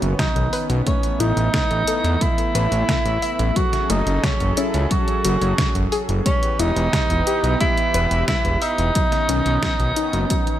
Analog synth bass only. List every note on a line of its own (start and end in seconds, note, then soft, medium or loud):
0.02 0.15 F#1 medium
0.36 0.48 B1 medium
0.69 0.82 B1 medium
1.20 1.33 A1 loud
1.37 1.49 A1 medium
1.71 1.83 A1 medium
2.04 2.17 E2 medium
2.55 2.68 A1 medium
2.72 2.84 A1 medium
3.06 3.18 A1 medium
3.39 3.52 A1 medium
3.90 4.02 F#1 loud
4.07 4.19 F#1 medium
4.40 4.53 F#1 medium
4.74 4.87 C#2 medium
5.25 5.37 F#1 loud
5.42 5.54 F#1 medium
5.75 5.88 F#1 medium
6.09 6.21 F#1 medium
6.59 6.72 E1 medium
6.76 6.89 E1 medium
7.10 7.23 E1 medium
7.44 7.56 B1 medium
7.94 8.07 E1 medium
8.11 8.24 E1 medium
8.45 8.57 E1 medium
8.79 8.91 E1 medium
9.29 9.42 B1 loud
9.46 9.59 B1 medium
9.80 9.92 B1 medium
10.13 10.26 F#1 medium